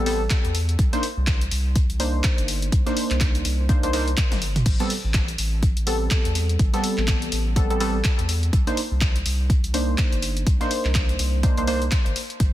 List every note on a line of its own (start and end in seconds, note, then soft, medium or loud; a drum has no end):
0.00 0.28 A1 medium
0.06 0.22 G3 loud
0.06 0.22 B3 medium
0.06 0.22 C4 medium
0.06 0.22 A4 loud
0.06 open hi-hat loud
0.06 open hi-hat medium
0.30 kick loud
0.30 snare loud
0.30 clap loud
0.30 closed hi-hat medium
0.45 0.76 E2 medium
0.45 closed hi-hat medium
0.55 closed hi-hat medium
0.55 open hi-hat medium
0.69 closed hi-hat soft
0.79 0.91 C2 medium
0.79 kick loud
0.79 closed hi-hat medium
0.93 1.06 A#3 medium
0.93 1.06 D4 medium
0.93 1.06 D#4 medium
0.93 1.06 C5 loud
0.93 snare soft
0.93 closed hi-hat medium
1.03 closed hi-hat medium
1.03 open hi-hat loud
1.17 1.49 C2 loud
1.27 kick loud
1.27 snare loud
1.27 clap loud
1.27 closed hi-hat medium
1.41 closed hi-hat medium
1.51 1.86 C2 medium
1.51 closed hi-hat medium
1.51 open hi-hat medium
1.76 kick loud
1.76 closed hi-hat medium
1.90 2.21 C2 medium
1.90 closed hi-hat medium
1.99 2.83 A#3 medium
1.99 2.83 D4 medium
1.99 2.83 D#4 medium
1.99 2.83 C5 medium
1.99 closed hi-hat medium
1.99 open hi-hat loud
2.24 kick loud
2.24 snare loud
2.24 clap loud
2.24 closed hi-hat medium
2.38 2.70 G1 medium
2.38 closed hi-hat medium
2.48 closed hi-hat medium
2.48 open hi-hat medium
2.62 closed hi-hat soft
2.72 2.84 C2 medium
2.72 kick loud
2.72 closed hi-hat medium
2.86 3.67 A#3 medium
2.86 3.67 D4 medium
2.86 3.67 D#4 medium
2.86 3.67 C5 medium
2.86 snare medium
2.86 closed hi-hat medium
2.97 closed hi-hat medium
2.97 open hi-hat loud
3.11 3.42 C2 loud
3.11 clap soft
3.11 closed hi-hat soft
3.21 kick loud
3.21 snare loud
3.21 clap loud
3.21 closed hi-hat medium
3.35 closed hi-hat medium
3.45 3.80 C2 medium
3.45 closed hi-hat medium
3.45 open hi-hat loud
3.69 3.81 A#3 medium
3.69 3.81 D4 medium
3.69 3.81 D#4 medium
3.69 3.81 C5 medium
3.69 kick loud
3.69 closed hi-hat medium
3.83 4.15 C2 medium
3.83 3.92 A#3 medium
3.83 3.92 D4 medium
3.83 3.92 D#4 medium
3.83 3.92 C5 loud
3.83 closed hi-hat medium
3.93 4.09 A#3 loud
3.93 4.09 D4 medium
3.93 4.10 D#4 medium
3.93 4.10 C5 loud
3.93 snare loud
3.93 closed hi-hat medium
3.93 open hi-hat loud
4.08 closed hi-hat soft
4.17 kick loud
4.17 clap loud
4.17 closed hi-hat medium
4.17 high tom medium
4.32 4.63 G1 medium
4.32 snare loud
4.32 closed hi-hat medium
4.32 high tom medium
4.42 open hi-hat medium
4.56 closed hi-hat soft
4.56 closed hi-hat medium
4.56 mid tom medium
4.66 4.78 A1 loud
4.66 kick loud
4.66 closed hi-hat medium
4.66 crash medium
4.80 4.93 G3 medium
4.80 4.93 B3 medium
4.80 4.93 C4 medium
4.80 4.93 A4 loud
4.80 snare soft
4.80 closed hi-hat medium
4.90 closed hi-hat medium
4.90 open hi-hat loud
5.04 5.36 A1 loud
5.14 kick loud
5.14 snare loud
5.14 clap loud
5.14 closed hi-hat medium
5.14 closed hi-hat loud
5.28 closed hi-hat medium
5.38 5.73 A1 medium
5.38 closed hi-hat medium
5.38 open hi-hat loud
5.63 kick loud
5.63 closed hi-hat medium
5.77 6.09 A1 medium
5.77 closed hi-hat medium
5.87 6.70 G3 medium
5.87 6.70 B3 medium
5.87 6.70 C4 medium
5.87 6.70 A4 medium
5.87 closed hi-hat medium
5.87 open hi-hat loud
6.11 kick loud
6.11 snare loud
6.11 clap loud
6.11 closed hi-hat medium
6.25 6.57 E2 medium
6.25 closed hi-hat medium
6.35 closed hi-hat medium
6.35 open hi-hat medium
6.49 closed hi-hat soft
6.59 6.71 A1 loud
6.59 kick loud
6.59 closed hi-hat medium
6.73 7.54 G3 medium
6.73 7.54 B3 medium
6.73 7.54 C4 medium
6.73 7.54 A4 loud
6.73 snare medium
6.73 closed hi-hat medium
6.84 closed hi-hat medium
6.84 open hi-hat loud
6.98 7.29 A1 loud
6.98 clap soft
7.08 kick loud
7.08 snare loud
7.08 clap loud
7.08 closed hi-hat medium
7.22 closed hi-hat medium
7.32 7.67 A1 medium
7.32 closed hi-hat medium
7.32 open hi-hat loud
7.56 7.68 G3 medium
7.56 7.68 B3 medium
7.56 7.68 C4 medium
7.56 7.68 A4 loud
7.56 kick loud
7.56 closed hi-hat medium
7.70 8.02 A1 medium
7.70 7.79 G3 medium
7.70 7.79 B3 medium
7.70 7.79 C4 medium
7.70 7.79 A4 loud
7.70 closed hi-hat medium
7.80 7.97 G3 loud
7.80 7.97 B3 medium
7.80 7.97 C4 medium
7.80 7.97 A4 loud
7.80 open hi-hat loud
7.80 open hi-hat medium
8.04 kick loud
8.04 snare loud
8.04 clap loud
8.04 closed hi-hat medium
8.19 8.51 E2 medium
8.19 closed hi-hat medium
8.29 closed hi-hat medium
8.29 open hi-hat medium
8.43 closed hi-hat soft
8.53 8.65 C2 loud
8.53 kick loud
8.53 closed hi-hat medium
8.67 8.80 A#3 medium
8.67 8.80 D4 medium
8.67 8.80 D#4 medium
8.67 8.80 C5 loud
8.67 snare soft
8.67 closed hi-hat medium
8.77 closed hi-hat medium
8.77 open hi-hat loud
8.91 9.23 C2 loud
9.01 kick loud
9.01 snare loud
9.01 clap loud
9.01 closed hi-hat medium
9.16 closed hi-hat medium
9.26 9.60 C2 loud
9.26 closed hi-hat medium
9.26 open hi-hat loud
9.50 kick loud
9.50 closed hi-hat medium
9.64 9.96 C2 medium
9.64 closed hi-hat medium
9.74 10.57 A#3 medium
9.74 10.57 D4 medium
9.74 10.57 D#4 medium
9.74 10.57 C5 medium
9.74 closed hi-hat medium
9.74 open hi-hat loud
9.98 kick loud
9.98 snare loud
9.98 clap loud
9.98 closed hi-hat medium
10.12 10.44 G1 medium
10.12 closed hi-hat medium
10.22 closed hi-hat medium
10.22 open hi-hat loud
10.37 closed hi-hat soft
10.47 10.59 C2 loud
10.47 kick loud
10.47 closed hi-hat medium
10.60 11.41 A#3 medium
10.60 11.41 D4 medium
10.60 11.41 D#4 medium
10.60 11.41 C5 loud
10.60 snare medium
10.60 closed hi-hat soft
10.71 closed hi-hat medium
10.71 open hi-hat loud
10.85 11.17 C2 loud
10.85 clap soft
10.95 kick loud
10.95 snare loud
10.95 clap loud
10.95 closed hi-hat medium
11.09 closed hi-hat medium
11.19 11.54 C2 loud
11.19 closed hi-hat medium
11.19 open hi-hat loud
11.43 11.55 A#3 medium
11.43 11.55 D4 medium
11.43 11.55 D#4 medium
11.43 11.55 C5 medium
11.43 kick loud
11.43 closed hi-hat medium
11.57 11.89 C2 medium
11.57 11.66 A#3 medium
11.57 11.66 D4 medium
11.57 11.66 D#4 medium
11.57 11.66 C5 loud
11.57 closed hi-hat soft
11.67 11.84 A#3 loud
11.67 11.84 D4 medium
11.67 11.84 D#4 medium
11.67 11.84 C5 loud
11.67 open hi-hat loud
11.67 open hi-hat medium
11.82 closed hi-hat soft
11.91 kick loud
11.91 snare loud
11.91 clap loud
11.91 closed hi-hat medium
12.06 12.14 G1 medium
12.06 closed hi-hat medium
12.16 closed hi-hat medium
12.16 open hi-hat loud
12.30 closed hi-hat soft
12.40 12.52 A1 loud
12.40 kick loud
12.40 closed hi-hat medium